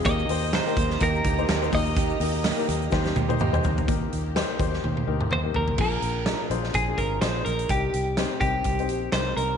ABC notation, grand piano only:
X:1
M:4/4
L:1/16
Q:"Swing 16ths" 1/4=126
K:Eb
V:1 name="Grand piano"
[B,EGB]2 [B,EGc]3 [B,EGB]3 [B,EGB]3 [B,EGc]2 [B,EGc] [B,EGB]2- | [B,EGB]2 [B,EGB]3 [B,EGB]3 [B,EGc]3 [B,EGc]2 [B,EGc]3 | [B,EGB]4 [B,EGc]2 [B,EGc]4 [B,EGB]3 [B,EGB]3 | [CDFAB]4 [DFAB]2 [DFAc]3 [DFAB]3 [DFAc]4 |
[CEGB]4 [CEGc]2 [CEGB]3 [CEGc]3 [CEGB]4 |]
V:2 name="Grand piano" clef=bass
B,,6 z8 B,,2- | B,,4 z12 | B,,6 z8 z2 | [B,,F,]6 z8 z2 |
[C,G,]6 z8 z2 |]